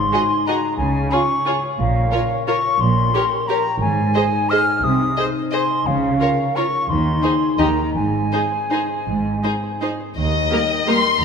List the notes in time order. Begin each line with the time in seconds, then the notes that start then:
Already playing: G#2 D#4 G#4 C6
0.12 F#4 G#4 D#5
0.30 D#5
0.47 F#4 G#4 D#5 F#5 A#5
0.64 D#5
0.77 C#2 C#3 G#5
0.95 C#4
1.12 F4 G#4 C#5 C#6
1.30 C#5
1.46 F4 G#4 C#5 F5
1.64 C#5
1.79 A#1 A#2 F5
1.96 C#4
2.11 F4 A#4 C#5
2.31 C#5
2.47 F4 A#4 C#5 F5 C#6
2.65 C#5
2.81 A#1 A#2 C6
2.98 C#4
3.14 G4 A#4 C#5
3.32 C#5
3.48 G4 A#4 C#5 G5 A#5
3.66 C#5
3.80 G#1 G#2 G#5
3.98 D#4
4.14 G#4 C5 D#5
4.32 D#5
4.50 G#4 C5 D#5 G#5 F6
4.67 D#5
4.82 C2 C3 D#6
5.00 D#4
5.17 G#4 C5 D#5
5.35 D#5
5.51 G#4 C5 D#5 G#5 C6
5.70 D#5
5.85 C#2 C#3 F5
6.03 C#4
6.20 F4 A#4 C#5
6.38 C#5
6.56 F4 A#4 C#5 F5 C#6
6.73 C#5
6.89 D#2 D#3 C6
7.06 D#4
7.23 D#4 G#4 C5
7.41 D#5
7.58 D#2 D#3 D#4 G4 D#5 A#5
7.78 D#4 G4
7.95 G#1 G#2 G#5
8.14 C4
8.32 D#4 G#4 C5
8.52 C5
8.70 D#4 G#4 C5 D#5
8.89 C5
9.07 G#1 G#2
9.25 C4
9.43 D#4 G#4 C5
9.63 C5
9.81 D#4 G#4 C5 D#5
10.00 C5
10.17 D#2 D#3 D#5
10.34 A#3
10.52 G3 A#3 G4 A#4
10.69 G5
10.87 G3 A#3 G4 A#4 C6
11.04 G4
11.20 D#2 D#3 A#5